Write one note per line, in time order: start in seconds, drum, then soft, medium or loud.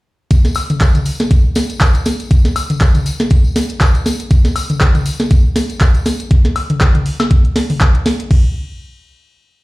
0.31 kick loud
0.31 closed hi-hat medium
0.31 tambourine medium
0.45 snare soft
0.45 closed hi-hat soft
0.45 tambourine soft
0.55 open hi-hat loud
0.55 tambourine medium
0.55 high woodblock medium
0.70 closed hi-hat medium
0.70 mid tom medium
0.70 tambourine soft
0.80 kick loud
0.80 clap loud
0.80 closed hi-hat medium
0.80 tambourine medium
0.95 closed hi-hat soft
0.95 mid tom medium
0.95 tambourine soft
1.05 open hi-hat loud
1.05 tambourine medium
1.20 snare medium
1.20 closed hi-hat medium
1.20 tambourine soft
1.31 kick loud
1.31 closed hi-hat medium
1.31 tambourine medium
1.55 snare medium
1.55 open hi-hat loud
1.55 tambourine medium
1.70 closed hi-hat medium
1.70 tambourine soft
1.81 kick loud
1.81 clap loud
1.81 closed hi-hat medium
1.81 tambourine medium
1.95 closed hi-hat soft
1.95 tambourine soft
2.06 snare medium
2.06 open hi-hat loud
2.06 tambourine medium
2.20 closed hi-hat medium
2.20 tambourine soft
2.31 kick loud
2.31 closed hi-hat medium
2.31 tambourine medium
2.45 snare soft
2.45 closed hi-hat soft
2.45 tambourine soft
2.56 open hi-hat loud
2.56 tambourine loud
2.56 high woodblock medium
2.70 closed hi-hat medium
2.70 mid tom medium
2.70 tambourine soft
2.80 kick loud
2.80 clap loud
2.80 closed hi-hat medium
2.80 tambourine medium
2.94 closed hi-hat soft
2.94 mid tom medium
2.94 tambourine soft
3.06 open hi-hat loud
3.06 tambourine loud
3.20 snare medium
3.20 closed hi-hat medium
3.20 tambourine soft
3.30 kick loud
3.30 closed hi-hat medium
3.30 tambourine medium
3.44 tambourine soft
3.56 snare medium
3.56 open hi-hat loud
3.56 tambourine loud
3.69 closed hi-hat medium
3.69 tambourine soft
3.81 kick loud
3.81 clap loud
3.81 closed hi-hat medium
3.81 tambourine medium
3.95 closed hi-hat soft
3.95 tambourine soft
4.06 snare medium
4.06 open hi-hat loud
4.06 tambourine loud
4.20 closed hi-hat medium
4.20 tambourine soft
4.31 kick loud
4.31 closed hi-hat medium
4.31 tambourine medium
4.45 snare soft
4.45 closed hi-hat soft
4.45 tambourine soft
4.56 open hi-hat loud
4.56 tambourine medium
4.56 high woodblock medium
4.70 closed hi-hat medium
4.70 mid tom medium
4.70 tambourine soft
4.80 kick loud
4.80 clap loud
4.80 closed hi-hat medium
4.80 tambourine soft
4.95 closed hi-hat soft
4.95 mid tom loud
4.95 tambourine soft
5.06 open hi-hat loud
5.06 tambourine medium
5.20 snare medium
5.20 closed hi-hat medium
5.20 tambourine soft
5.30 kick loud
5.30 closed hi-hat medium
5.30 tambourine soft
5.56 snare medium
5.56 open hi-hat loud
5.56 tambourine medium
5.69 closed hi-hat medium
5.69 tambourine soft
5.81 kick loud
5.81 clap loud
5.81 closed hi-hat medium
5.81 tambourine medium
5.94 closed hi-hat soft
5.94 tambourine soft
6.06 snare medium
6.06 open hi-hat loud
6.06 tambourine medium
6.20 closed hi-hat medium
6.20 tambourine soft
6.31 kick loud
6.31 closed hi-hat medium
6.45 snare soft
6.45 closed hi-hat soft
6.56 open hi-hat loud
6.56 high woodblock medium
6.70 closed hi-hat medium
6.70 mid tom loud
6.81 kick loud
6.81 clap loud
6.81 closed hi-hat medium
6.95 closed hi-hat soft
6.95 mid tom loud
7.06 open hi-hat loud
7.20 snare medium
7.20 closed hi-hat soft
7.20 high woodblock medium
7.31 kick loud
7.31 closed hi-hat medium
7.45 closed hi-hat soft
7.56 snare medium
7.56 open hi-hat loud
7.70 open hi-hat medium
7.70 mid tom medium
7.81 kick loud
7.81 clap loud
7.81 closed hi-hat medium
7.95 closed hi-hat soft
8.06 snare medium
8.06 open hi-hat loud
8.20 closed hi-hat medium
8.31 kick loud
8.31 crash medium